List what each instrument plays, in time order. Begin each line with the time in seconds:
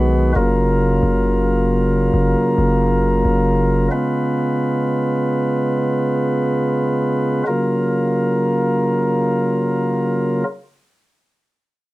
Already playing: 808-style bass B1, pipe organ D#3 G#3 B3 F#4 B4
0.36 808-style bass F#1, pipe organ C#3 F#3 A#3 F4 A#4
1.03 808-style bass F#1
2.14 808-style bass F#1
2.58 808-style bass F#1
3.25 808-style bass F#1
3.91 pipe organ G#3 B3 B4
7.47 pipe organ C#3 F#3 A#3 F4 A#4